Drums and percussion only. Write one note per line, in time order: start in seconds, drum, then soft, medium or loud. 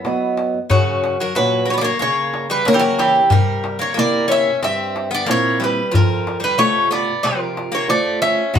0.05 darbuka tek medium
0.37 darbuka tek medium
0.54 darbuka tek soft
0.70 darbuka dum medium
1.04 darbuka tek medium
1.20 darbuka tek soft
1.36 darbuka tek medium
1.52 darbuka tek soft
1.84 darbuka tek soft
2.01 darbuka tek medium
2.34 darbuka tek medium
2.66 darbuka tek medium
2.82 darbuka tek soft
2.99 darbuka tek medium
3.31 darbuka dum medium
3.64 darbuka tek medium
3.80 darbuka tek soft
3.97 darbuka tek medium
4.14 darbuka tek soft
4.30 darbuka tek medium
4.47 darbuka tek soft
4.62 darbuka tek medium
4.96 darbuka tek medium
5.28 darbuka tek medium
5.45 darbuka tek soft
5.62 darbuka tek medium
5.94 darbuka dum medium
6.27 darbuka tek medium
6.44 darbuka tek soft
6.59 darbuka tek medium
6.76 darbuka tek soft
6.92 darbuka tek medium
7.09 darbuka tek soft
7.25 darbuka tek medium
7.57 darbuka tek medium
7.89 darbuka tek medium
8.06 darbuka tek soft
8.22 darbuka tek medium
8.55 darbuka dum medium